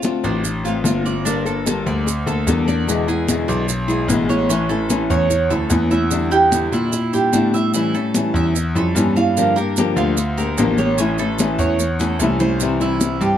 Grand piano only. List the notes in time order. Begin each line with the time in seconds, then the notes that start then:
0.24 A1
0.84 G1
1.86 D2
2.26 D2
2.47 E2
3.48 B1
4.08 A1
5.10 E2
5.50 D2
5.70 E2
6.72 A#2
7.32 A2
8.34 E2
8.75 F2
8.95 G2
9.96 D2
10.58 A1
11.58 E2
12.19 C2
13.21 G2